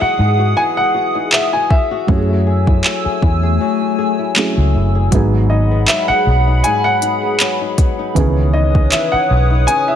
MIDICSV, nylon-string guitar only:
0, 0, Header, 1, 2, 480
1, 0, Start_track
1, 0, Tempo, 759494
1, 1318, Time_signature, 4, 2, 24, 8
1, 6292, End_track
2, 0, Start_track
2, 0, Title_t, "Nylon-string guitar"
2, 0, Program_c, 0, 24
2, 0, Note_on_c, 0, 52, 79
2, 0, Note_on_c, 0, 56, 65
2, 0, Note_on_c, 0, 63, 60
2, 8, Note_on_c, 0, 66, 64
2, 110, Note_off_c, 0, 63, 0
2, 117, Note_on_c, 0, 63, 60
2, 245, Note_off_c, 0, 66, 0
2, 247, Note_on_c, 0, 66, 64
2, 355, Note_off_c, 0, 52, 0
2, 358, Note_on_c, 0, 52, 75
2, 484, Note_off_c, 0, 56, 0
2, 486, Note_on_c, 0, 56, 59
2, 595, Note_off_c, 0, 66, 0
2, 597, Note_on_c, 0, 66, 66
2, 720, Note_off_c, 0, 63, 0
2, 728, Note_on_c, 0, 63, 62
2, 836, Note_off_c, 0, 56, 0
2, 838, Note_on_c, 0, 56, 67
2, 966, Note_off_c, 0, 66, 0
2, 968, Note_on_c, 0, 66, 61
2, 1078, Note_off_c, 0, 63, 0
2, 1205, Note_off_c, 0, 66, 0
2, 1208, Note_on_c, 0, 66, 69
2, 1316, Note_off_c, 0, 52, 0
2, 1318, Note_on_c, 0, 54, 84
2, 1446, Note_off_c, 0, 56, 0
2, 1448, Note_on_c, 0, 57, 57
2, 1556, Note_off_c, 0, 66, 0
2, 1559, Note_on_c, 0, 68, 67
2, 1688, Note_on_c, 0, 64, 58
2, 1791, Note_off_c, 0, 57, 0
2, 1799, Note_on_c, 0, 57, 61
2, 1926, Note_off_c, 0, 68, 0
2, 1928, Note_on_c, 0, 68, 67
2, 2032, Note_off_c, 0, 64, 0
2, 2039, Note_on_c, 0, 64, 58
2, 2166, Note_off_c, 0, 68, 0
2, 2169, Note_on_c, 0, 68, 64
2, 2277, Note_off_c, 0, 54, 0
2, 2279, Note_on_c, 0, 54, 80
2, 2401, Note_off_c, 0, 57, 0
2, 2409, Note_on_c, 0, 57, 58
2, 2516, Note_off_c, 0, 68, 0
2, 2518, Note_on_c, 0, 68, 64
2, 2641, Note_off_c, 0, 64, 0
2, 2649, Note_on_c, 0, 64, 60
2, 2752, Note_off_c, 0, 57, 0
2, 2760, Note_on_c, 0, 57, 65
2, 2888, Note_off_c, 0, 68, 0
2, 2890, Note_on_c, 0, 68, 64
2, 2992, Note_off_c, 0, 64, 0
2, 2999, Note_on_c, 0, 64, 62
2, 3127, Note_off_c, 0, 68, 0
2, 3129, Note_on_c, 0, 68, 67
2, 3239, Note_on_c, 0, 44, 82
2, 3290, Note_off_c, 0, 64, 0
2, 3291, Note_off_c, 0, 57, 0
2, 3367, Note_off_c, 0, 54, 0
2, 3369, Note_on_c, 0, 54, 55
2, 3388, Note_off_c, 0, 68, 0
2, 3479, Note_on_c, 0, 63, 66
2, 3610, Note_on_c, 0, 59, 63
2, 3712, Note_off_c, 0, 54, 0
2, 3719, Note_on_c, 0, 54, 64
2, 3847, Note_off_c, 0, 63, 0
2, 3850, Note_on_c, 0, 63, 62
2, 3958, Note_off_c, 0, 59, 0
2, 3960, Note_on_c, 0, 59, 58
2, 4089, Note_off_c, 0, 63, 0
2, 4091, Note_on_c, 0, 63, 66
2, 4193, Note_off_c, 0, 44, 0
2, 4200, Note_on_c, 0, 44, 74
2, 4322, Note_off_c, 0, 54, 0
2, 4330, Note_on_c, 0, 54, 60
2, 4438, Note_off_c, 0, 63, 0
2, 4440, Note_on_c, 0, 63, 66
2, 4568, Note_off_c, 0, 59, 0
2, 4571, Note_on_c, 0, 59, 62
2, 4674, Note_off_c, 0, 54, 0
2, 4682, Note_on_c, 0, 54, 64
2, 4808, Note_off_c, 0, 63, 0
2, 4811, Note_on_c, 0, 63, 65
2, 4919, Note_off_c, 0, 59, 0
2, 4922, Note_on_c, 0, 59, 63
2, 5047, Note_off_c, 0, 63, 0
2, 5050, Note_on_c, 0, 63, 71
2, 5159, Note_on_c, 0, 49, 83
2, 5211, Note_off_c, 0, 44, 0
2, 5212, Note_off_c, 0, 54, 0
2, 5288, Note_on_c, 0, 52, 55
2, 5307, Note_off_c, 0, 63, 0
2, 5399, Note_on_c, 0, 63, 64
2, 5526, Note_off_c, 0, 59, 0
2, 5528, Note_on_c, 0, 59, 64
2, 5637, Note_off_c, 0, 52, 0
2, 5639, Note_on_c, 0, 52, 65
2, 5765, Note_off_c, 0, 63, 0
2, 5768, Note_on_c, 0, 63, 64
2, 5875, Note_off_c, 0, 59, 0
2, 5878, Note_on_c, 0, 59, 58
2, 6005, Note_off_c, 0, 63, 0
2, 6008, Note_on_c, 0, 63, 64
2, 6109, Note_off_c, 0, 49, 0
2, 6117, Note_on_c, 0, 49, 75
2, 6245, Note_off_c, 0, 52, 0
2, 6247, Note_on_c, 0, 52, 58
2, 6292, Note_off_c, 0, 49, 0
2, 6292, Note_off_c, 0, 52, 0
2, 6292, Note_off_c, 0, 59, 0
2, 6292, Note_off_c, 0, 63, 0
2, 6292, End_track
0, 0, End_of_file